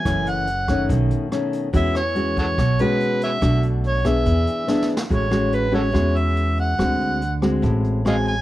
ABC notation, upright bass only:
X:1
M:4/4
L:1/8
Q:1/4=142
K:E
V:1 name="Upright bass" clef=bass
F,,,4 B,,, z3 | E,,4 B,,, z3 | B,,,4 E,, z3 | [K:A] A,,,4 E,,4 |
D,,4 A,,,4 |]